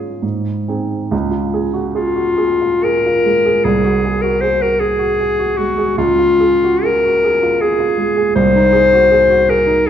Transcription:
Already playing: G#2 C#4 F4 G#4
0.22 G#2
0.68 C4 D#4 G#4
1.11 C#2
1.31 F4
1.54 G#4
1.74 F#4
1.95 F4 G#4
2.16 F#4
2.38 G#4
2.61 F4
2.84 G#4 A#4
3.06 F4
3.26 G#3
3.45 G#4
3.64 C2 G#4
3.84 F#4
4.05 G#4
4.22 F#4 A#4
4.41 G#4 C5
4.62 F#4 A#4
4.80 G#4
4.99 F#4
5.20 G#4
5.39 F#4
5.57 G#3 F#4
5.78 G#4
5.98 C#2 F4
6.19 F4
6.40 G#4
6.64 F#4
6.84 G#4 A#4
7.05 F#4
7.24 G#4
7.43 F4
7.61 G#4
7.80 F4
7.98 G#3
8.17 G#4
8.35 C2 C5
8.55 D#4
8.73 G#4
8.93 F#4
9.11 G#4
9.30 F#4
9.49 G#4 A#4
9.67 D#4

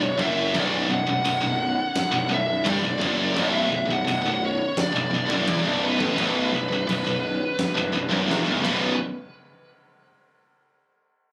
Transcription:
Already playing: D5
0.00 B0 B1 C#5
0.17 F#1 F#2 E5, kick
0.54 B0 B1, kick, crash
0.58 D5
0.89 B0 B1 F#5
1.07 B0 B1
1.24 B0 B1, crash
1.42 B0 B1
1.96 kick, snare, crash
2.11 B0 B1
2.29 B0 B1
2.33 E5
2.65 G1 G2, kick, crash
2.69 D5
2.81 B0 B1
2.98 F#2, kick
3.02 F#1 F#2
3.34 B0 B1, kick
3.38 E5, crash
3.68 B0 B1
3.72 B1
3.85 B0 B1
3.91 B1 F#5
4.04 B0 B1
4.08 crash
4.21 B1
4.25 B0 B1
4.45 C#5
4.77 D5, kick, snare, crash
4.92 B0 B1
4.96 B1
5.10 B0 B1
5.27 F#1 F#2, kick
5.32 F#2
5.44 E1 E2, kick
5.48 E2, crash
5.62 B0 B1
5.84 B4
5.98 A1 A2, kick
6.02 A2
6.15 B0 B1, kick, crash
6.20 B1
6.51 B0 B1
6.55 B1
6.68 B0 B1
6.72 B1
6.87 B0 B1, crash
7.04 B0 B1
7.59 kick, snare, crash
7.75 B0 B1
7.92 B0 B1
8.09 F#1 F#2
8.27 E1 E2, snare
8.45 B0 B1, high tom
8.63 B0 B1 F#2 B2 B4, kick, crash

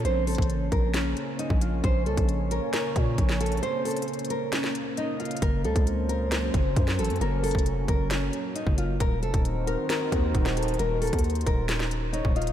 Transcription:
Already playing: C#3 A#3 C#4
0.05 A#1 C5, closed hi-hat
0.27 A4, closed hi-hat, open hi-hat
0.35 A1, kick, closed hi-hat
0.42 closed hi-hat
0.50 closed hi-hat
0.72 A#1 A#4, kick, closed hi-hat
0.94 C#4, snare, closed hi-hat
1.17 closed hi-hat
1.39 D#4, closed hi-hat
1.50 A#1, kick
1.61 F4, closed hi-hat
1.84 A#1 C5, kick, closed hi-hat
2.06 C2 A4 C#5, closed hi-hat
2.17 A#1, kick, closed hi-hat
2.29 closed hi-hat
2.51 A#4, closed hi-hat
2.73 A#4, snare, closed hi-hat
2.96 A#2, kick, closed hi-hat
3.18 A#1, kick, closed hi-hat
3.29 snare
3.41 A4, closed hi-hat
3.46 closed hi-hat
3.52 closed hi-hat
3.57 closed hi-hat
3.63 C5, closed hi-hat
3.85 A4, closed hi-hat, open hi-hat
3.91 closed hi-hat
3.96 closed hi-hat
4.02 closed hi-hat
4.08 closed hi-hat
4.13 closed hi-hat
4.19 closed hi-hat
4.25 closed hi-hat
4.30 A#4, closed hi-hat
4.52 C#4, snare, closed hi-hat
4.64 snare
4.75 closed hi-hat
4.97 D#4 D#5, closed hi-hat
5.20 F4 F5, closed hi-hat
5.25 closed hi-hat
5.31 closed hi-hat
5.37 closed hi-hat
5.42 F#1 F#3 C#4 A#4, kick, closed hi-hat
5.64 C#2 A4 C5, closed hi-hat
5.76 C#2, kick, closed hi-hat
5.87 closed hi-hat
6.09 A#4, closed hi-hat
6.32 A#4, snare, closed hi-hat
6.54 F#1, kick, closed hi-hat
6.76 F#2, kick, closed hi-hat
6.88 snare
6.99 A1 A4, closed hi-hat
7.04 closed hi-hat
7.10 F#2, closed hi-hat
7.16 closed hi-hat
7.21 F#1 A#4, closed hi-hat
7.43 A4, closed hi-hat, open hi-hat
7.51 F1, kick, closed hi-hat
7.59 closed hi-hat
7.66 closed hi-hat
7.88 F#1 A#4, kick, closed hi-hat
8.11 C#4, snare, closed hi-hat
8.33 closed hi-hat
8.56 D#4, closed hi-hat
8.67 F#1, kick
8.78 F4, closed hi-hat
9.00 D#1 D#3 D#4 F#4 A#4, kick, closed hi-hat
9.23 F1 A4 C5, closed hi-hat
9.34 D#1, kick, closed hi-hat
9.45 closed hi-hat
9.67 A#4, closed hi-hat
9.90 A#4, snare, closed hi-hat
10.12 D#2, kick, closed hi-hat
10.35 D#1, kick, closed hi-hat
10.46 snare
10.57 A4, closed hi-hat
10.63 closed hi-hat
10.68 closed hi-hat
10.74 closed hi-hat
10.79 D#1 A#4 C5, closed hi-hat
11.02 A4, closed hi-hat, open hi-hat
11.07 closed hi-hat
11.13 D#2, kick, closed hi-hat
11.19 closed hi-hat
11.24 closed hi-hat
11.30 closed hi-hat
11.35 closed hi-hat
11.41 closed hi-hat
11.46 D#1 A#4, kick, closed hi-hat
11.69 C#4, snare, closed hi-hat
11.80 snare
11.91 closed hi-hat
12.13 D#4 C#5, closed hi-hat
12.25 D#1, kick
12.36 F4 D#5, closed hi-hat
12.42 closed hi-hat
12.47 closed hi-hat

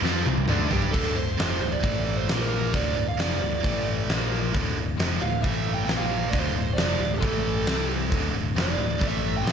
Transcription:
0.02 F2 F3 C4 F4, snare
0.26 C2 C3 G3, high tom
0.38 high tom
0.48 D2 D3 A3 D4, mid tom
0.70 G2 G3 D4 G4, floor tom
0.82 floor tom
0.92 D1 D2 A2 D3 A4, kick, crash
1.15 D1 D2 A2 C5
1.37 F1 F2 C3 F3, snare, open hi-hat
1.60 D1 D2 A2
1.72 D5
1.82 A1 A2 E3 A3 D5, kick, open hi-hat
2.17 C5
2.27 A#1 A#2 F3 A#3, snare, open hi-hat
2.41 A#4
2.72 D1 D2 A2 D3 D5, kick, open hi-hat
2.96 D1 D2 A2
3.08 F5
3.18 F1 F2 C3 F3 D5, snare, open hi-hat
3.42 D1 D2 A2
3.63 A1 A2 E3 A3, kick, open hi-hat
4.08 A#1 A#2 F3 A#3, snare, open hi-hat
4.53 D1 D2 A2 D3, kick, open hi-hat
4.76 D1 D2 A2
4.97 F1 F2 C3 F3, snare, open hi-hat
5.19 D1 D2 A2 F5
5.41 A1 A2 E3 A3 E5, kick, open hi-hat
5.46 E3
5.74 G5
5.85 A#1 A#2 F3 A#3 G5
5.89 snare, open hi-hat
5.97 F5
6.30 D1 D2 A2 D3 D5, kick, open hi-hat
6.39 C5
6.53 D1 D2 A2
6.74 F2 C3 F3 D5, open hi-hat
6.78 F1 F3, snare
6.85 D5
6.98 D1 D2 A2
7.02 D2
7.14 G4
7.19 A1 A2 E3 A3 A4, kick, open hi-hat
7.66 C2 C3 G3 C4, snare, open hi-hat
8.10 D1 D2 A2 D3, kick, open hi-hat
8.33 D1 D2 A2
8.55 F1 F2 C3 F3, snare, open hi-hat
8.62 D5
8.77 D1 D2 A2
8.98 A1 A2 E3 A3, kick, open hi-hat
9.07 E5
9.37 G5
9.43 A#1 A#2 F3 A#3
9.47 snare, open hi-hat

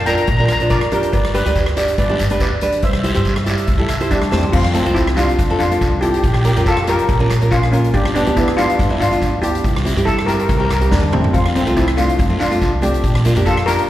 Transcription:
Already playing: F2
0.06 D4 F4 A#4 G5 A#5, closed hi-hat, short guiro
0.15 A#5, closed hi-hat
0.22 A#5
0.27 A#1 A#5, kick, closed hi-hat, long guiro
0.37 D4 F4 A#4 A#5
0.45 A#5, cross-stick, closed hi-hat
0.49 A#1 A#5, short guiro
0.59 D4 F4 C5 A#5, closed hi-hat
0.70 F2 A#4 D5, kick, closed hi-hat, short guiro
0.81 cross-stick
0.91 D4 F4 G4 A#4, closed hi-hat
1.03 closed hi-hat
1.13 G1 B4 D5, kick, closed hi-hat, long guiro
1.25 cross-stick
1.34 D4 G4 B4, closed hi-hat
1.45 D2 D4 G4 B4, closed hi-hat
1.55 kick, closed hi-hat, short guiro
1.66 cross-stick
1.76 D4 G4 D5, closed hi-hat, short guiro
1.88 closed hi-hat
1.98 G1 B4 D5, kick, closed hi-hat, long guiro
2.09 D4 G4 D5
2.19 G1, closed hi-hat, short guiro
2.30 D4 G4 B4, closed hi-hat
2.40 D2 B4 D5, kick, closed hi-hat, short guiro
2.61 D4 G4 B4, closed hi-hat
2.72 closed hi-hat
2.82 C2 C5 E5, kick, closed hi-hat, long guiro
2.91 E5, cross-stick
3.00 E4 E5
3.04 G4 C5 E5, closed hi-hat
3.14 G2 E4 G4 C5 E5, closed hi-hat
3.22 E5, kick, closed hi-hat
3.26 E5, short guiro
3.36 E5, cross-stick
3.44 E4 G4 D5 E5, closed hi-hat, short guiro
3.51 E5
3.58 E5, closed hi-hat
3.67 C2 E5, kick, closed hi-hat, long guiro
3.75 E4 G4 E5
3.79 A4 E5
3.89 C2 E5, cross-stick, closed hi-hat, short guiro
3.97 E4 G4 E5, closed hi-hat
4.01 C5
4.11 D2 G3 D4, kick, closed hi-hat, short guiro
4.22 cross-stick
4.31 E2 A3 C4 E4 G4 C5, snare
4.43 floor tom
4.52 F2 C4 F4, kick, crash, long guiro
4.64 cross-stick
4.73 A3 C4 F4 A4, closed hi-hat
4.85 C2 C4 F4 C5, closed hi-hat
4.94 C4 E4, kick, closed hi-hat, short guiro
5.07 cross-stick
5.16 C4 D4 F4 G4, closed hi-hat, short guiro
5.29 closed hi-hat
5.39 F2, kick, closed hi-hat, long guiro
5.50 C4 F4 A4
5.59 F2 D4 F4, closed hi-hat, short guiro
5.71 C4 F4 A4, closed hi-hat
5.81 C2, kick, closed hi-hat, short guiro
6.01 C4 E4 F4 G4 A4, closed hi-hat
6.10 G4
6.14 G4, closed hi-hat
6.24 A#1 G4, kick, closed hi-hat, long guiro
6.33 G4, cross-stick
6.41 C#4 F4 G4, closed hi-hat
6.45 G4 A#4
6.56 F2 C#4 F4 G4 A#4, closed hi-hat
6.66 F4 A4, kick, closed hi-hat, short guiro
6.77 cross-stick
6.87 C#4 F4 G4 A#4, closed hi-hat, short guiro
6.99 closed hi-hat
7.09 A#1, kick, closed hi-hat, long guiro
7.20 C#4 F4 A#4
7.30 A#1, cross-stick, closed hi-hat, short guiro
7.41 C#4 F4 A#4, closed hi-hat
7.51 A#1 C#4 F4, kick, closed hi-hat, short guiro
7.63 cross-stick
7.71 A#3 C#4 F4 A#4, closed hi-hat
7.84 closed hi-hat
7.94 G1 D4 G4, kick, closed hi-hat, long guiro
8.05 cross-stick
8.14 B3 D4 G4, closed hi-hat
8.27 D2 B3 D4 G4, closed hi-hat
8.37 B3 E4, kick, closed hi-hat, short guiro
8.48 cross-stick
8.57 B3 D4 F4 G4, closed hi-hat, short guiro
8.70 closed hi-hat
8.79 G1, kick, closed hi-hat, long guiro
8.90 B3 D4 E4
9.00 G1 D4 F4, closed hi-hat, short guiro
9.11 B3 D4 F4, closed hi-hat
9.22 D2, kick, closed hi-hat, short guiro
9.42 B3 D4 E4 G4, closed hi-hat
9.55 closed hi-hat
9.64 C2, kick, closed hi-hat, long guiro
9.76 cross-stick
9.85 C4 E4 G4, closed hi-hat
9.96 G2 C4 E4 G4, closed hi-hat
10.05 E4 A4, kick, closed hi-hat, short guiro
10.19 cross-stick
10.26 C4 E4 G4 A#4, closed hi-hat, short guiro
10.34 A#4
10.39 A#4, closed hi-hat
10.49 C2 A#4, kick, closed hi-hat, long guiro
10.57 C4 E4 G4 A#4
10.65 A#4
10.70 C2 A#4, cross-stick, closed hi-hat, short guiro
10.81 C4 E4 G4 A#4, closed hi-hat
10.91 E2 G3 D4, kick, snare, short guiro
11.03 high tom
11.12 A3 C4 E4 G4, mid tom
11.24 floor tom
11.33 F2 C4 F4, kick, closed hi-hat, long guiro
11.46 cross-stick
11.55 A3 C4 F4, closed hi-hat
11.66 C2 A3 C4 F4, closed hi-hat
11.77 C4 E4, kick, closed hi-hat, short guiro
11.88 cross-stick
11.97 A3 C4 D4 F4, closed hi-hat, short guiro
12.09 closed hi-hat
12.19 F2, kick, closed hi-hat, long guiro
12.29 A3 C4 F4
12.40 F2 D4 F4, closed hi-hat, short guiro
12.50 A3 C4 F4, closed hi-hat
12.61 C2, kick, closed hi-hat, short guiro
12.82 A3 C4 D4 G4, closed hi-hat
12.94 closed hi-hat
13.04 A#1, kick, closed hi-hat, long guiro
13.15 cross-stick
13.25 A#3 D4 F4, closed hi-hat
13.36 F2 A#3 D4 G4, closed hi-hat
13.46 F4 A4, kick, closed hi-hat, short guiro
13.57 cross-stick
13.66 A#3 D4 F4 G4 A#4, closed hi-hat, short guiro
13.78 closed hi-hat

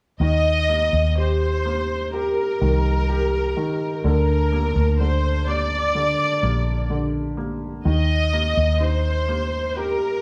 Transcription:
0.20 D#2 D#3 D#5
0.69 A#3
0.93 D#2
1.17 G4 C5
1.65 A#3
2.13 G4 A#4
2.61 C2 D#3
3.09 G4
3.57 D#3
4.04 D2 D3 A#4
4.52 A#3
4.76 D2
5.00 D3 C5
5.47 A#3 D5
5.95 D3
6.42 A#1 A#3
6.90 D3
7.37 A#3
7.85 D#2 D#3 D#5
8.33 A#3
8.57 D#2
8.80 D#4 C5
9.28 A#3
9.76 G4 A#4

